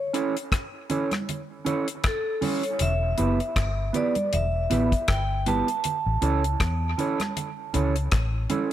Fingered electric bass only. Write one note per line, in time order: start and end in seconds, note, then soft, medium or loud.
2.81 3.13 E1 loud
3.19 3.38 F#1 medium
3.56 3.89 G1 medium
4.33 4.66 E1 medium
4.71 4.90 A1 medium
5.09 5.61 G1 medium
6.06 6.20 A1 medium
6.22 6.55 C#2 medium
6.60 6.93 E2 medium
7.75 8.08 C#2 medium
8.12 8.45 A1 medium